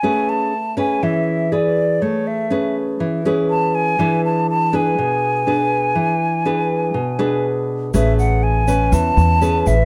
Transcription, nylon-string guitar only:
\new Staff \with { instrumentName = "Nylon-string guitar" } { \time 4/4 \key a \major \tempo 4 = 122 << { <cis' gis' b'>4 r8 <cis' gis' b'>4. <gis' b'>4~ | <gis' b'>4 <cis' gis' b'>4. <cis' gis' b'>4. | <d' gis' b'>4. <d' gis' b'>4. <d' gis' b'>4~ | <d' gis' b'>8 r8 <d' gis' b'>4 r8 <d' gis' b'>4. |
<cis' gis' b'>4. <cis' b'>4. <cis' gis' b'>8 r8 | } \\ { a2 e2 | a2 e2 | e2 b,2 | e2 b,2 |
a2 e2 | } >> }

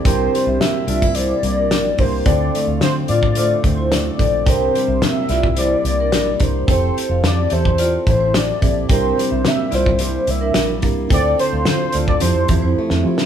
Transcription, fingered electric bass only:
\new Staff \with { instrumentName = "Fingered electric bass" } { \clef bass \time 4/4 \key c \mixolydian \tempo 4 = 109 c,8 r16 c,16 c8 c,4 c,8 bes,,8 c,8 | d,8 r16 d,16 d8 a,4 d,4 bes,,8 | c,8 r16 c,16 c8 c,4 c,8 bes,,8 c,8 | f,,8 r16 f,,16 f,8 e,4 a,,4 bes,,8 |
c,8 r16 c,16 c8 c,4 c,8 bes,,8 c,8 | d,8 r16 d,16 d8 d,8 f,16 f,16 e,16 f,16 r16 f,16 f8 | }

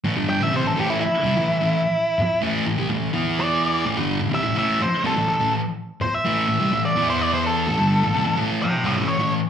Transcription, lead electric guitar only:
\new Staff \with { instrumentName = "Lead electric guitar" } { \time 4/4 \key e \dorian \tempo 4 = 126 r8 g''16 e''16 c''16 a'16 g'16 e'16 e'2~ | e'4 r2 d''4 | r4 e''8 e''8 c''8 a'8 a'8 r8 | r8 c''16 e''4. d''8 c''16 d''16 c''16 a'8~ |
a'4. r8 <e'' g''>8 <cis'' e''>8 cis''8 r8 | }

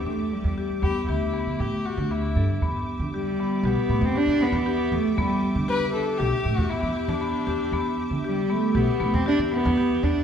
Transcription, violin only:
\new Staff \with { instrumentName = "Violin" } { \time 5/4 \key e \minor \tempo 4 = 117 r4. g'8 e'4 g'8 fis'8 e'4 | r1 r4 | r4 b'8 a'8 g'8. fis'16 e'8. d'4~ d'16~ | d'8. r1 r16 | }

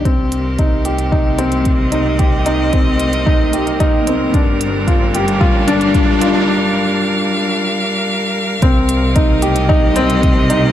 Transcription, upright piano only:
\new Staff \with { instrumentName = "Upright piano" } { \time 4/4 \key c \minor \tempo 4 = 112 c'8 r8 ees'8 g'8 ees'8 c'8 r8 ees'8 | g'8 ees'8 c'8 r8 ees'8 g'8 ees'8 c'8 | d'8 r8 f'8 g'8 f'8 d'8 r8 f'8 | r1 |
c'8 r8 ees'8 g'8 ees'8 c'8 r8 ees'8 | }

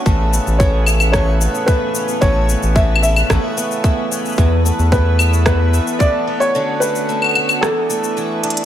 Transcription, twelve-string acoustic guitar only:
\new Staff \with { instrumentName = "Twelve-string acoustic guitar" } { \time 4/4 \key a \major \tempo 4 = 111 a,8 b8 e8 e'8 a,8 b8 e8 cis'8 | a,8 b8 e8 e'8 a,8 b8 e8 cis'8 | e,8 a8 e8 e'8 e,8 a8 e8 b8 | d8 a8 a8 fis'8 e,8 a8 e8 d'8 | }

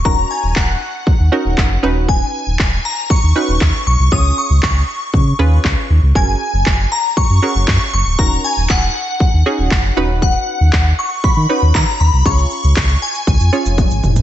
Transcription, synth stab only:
\new Staff \with { instrumentName = "Synth stab" } { \time 4/4 \key ces \lydian \tempo 4 = 118 <des' ees' ges' bes'>4. r4 <des' ees' ges' bes'>4 <cis' dis' fis' b'>8~ | <cis' dis' fis' b'>4 r4. <cis' dis' fis' b'>4 r8 | <des' f' aes' des''>4. r4 <des' f' aes' ces''>4 r8 | <des' ges' aes' bes'>4. r4 <des' ges' aes' bes'>4 r8 |
<des' ees' ges' bes'>4. r4 <des' ees' ges' aes'>4 <cis' dis' fis' b'>8~ | <cis' dis' fis' b'>4 r4. <cis' dis' fis' b'>4 r8 | <des' f' aes' des''>4. r4 <des' f' aes' des''>4 r8 | }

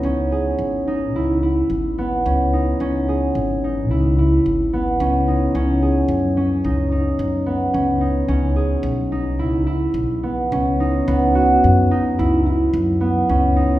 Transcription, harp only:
\new Staff \with { instrumentName = "Harp" } { \time 5/4 \key b \mixolydian \tempo 4 = 109 cis'8 gis'4 dis'8 e'8 e'4 b8 cis'8 dis'8 | cis'8 gis'4 dis'8 e'8 e'4 b8 cis'8 dis'8 | cis'8 gis'4 cis'8 dis'8 dis'4 b8 cis'8 dis'8 | cis'8 gis'4 dis'8 e'8 e'4 b8 cis'8 dis'8 |
b8 fis'4 dis'8 e'8 e'4 b8 cis'8 dis'8 | }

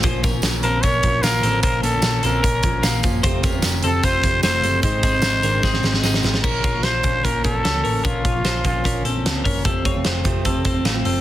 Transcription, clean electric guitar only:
\new Staff \with { instrumentName = "Clean electric guitar" } { \time 4/4 \key bes \minor \tempo 4 = 150 <f' c''>8 <des' bes'>4 <c' a'>8 <des' bes'>4 <bes f'>8 <c' a'>8 | <f' c''>8 <bes des'>4 <c' a'>8 <des' bes'>4 <bes f'>4 | <f' c''>8 <des' bes'>4 <c' a'>8 <f' c''>4 <a f'>8 <c' a'>8 | <ees' c''>8 <c' aes'>4 <d' bes'>8 <c' aes'>4 <c' aes'>4 |
<des' bes'>8 <f' des''>8 <f' c''>4 <des' bes'>8 <des' bes'>8 <des' a'>8 <des' bes'>8 | <des' bes'>8 <f' des''>8 <f' c''>4 <des' bes'>8 <c' a'>4 <des' bes'>8 | <c' a'>8 <f' des''>8 <f' c''>4 <c' a'>8 <c' a'>8 <a f'>8 <c' a'>8 | }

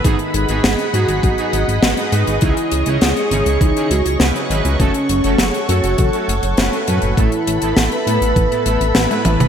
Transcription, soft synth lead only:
\new Staff \with { instrumentName = "Soft synth lead" } { \time 4/4 \key cis \minor \tempo 4 = 101 dis'4 gis'8 fis'8 fis'4 r4 | e'4 gis'4 dis'8 fis'4 r8 | cis'4 gis'8 fis'8 fis'4 r4 | e'4 a'8 b'4. r4 | }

